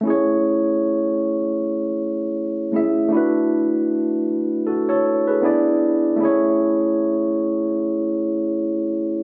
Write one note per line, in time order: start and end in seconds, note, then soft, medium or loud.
0.01 2.68 A3 medium
0.01 2.69 C#4 medium
0.05 2.70 E4 soft
0.05 2.71 G#4 medium
0.10 2.72 C#5 medium
2.72 3.07 A3 soft
2.72 3.12 C#4 soft
2.72 3.11 E4 soft
2.72 3.13 G#4 soft
2.76 3.13 E5 medium
3.08 5.37 A3 medium
3.08 5.38 D4 medium
3.12 5.39 E4 medium
3.12 4.26 F#4 medium
3.17 4.27 B4 medium
4.67 4.87 F#4 soft
4.67 4.87 A4 medium
4.89 5.25 A4 medium
4.89 5.25 C#5 medium
5.27 5.44 G#4 soft
5.27 5.63 B4 medium
5.41 6.19 B3 medium
5.41 6.20 D4 medium
5.41 6.19 E4 medium
5.41 6.21 G#4 medium
5.46 6.21 D5 medium
6.16 9.21 A3 medium
6.16 9.23 C#4 medium
6.16 9.23 E4 medium
6.23 9.23 G#4 medium
6.23 9.23 C#5 medium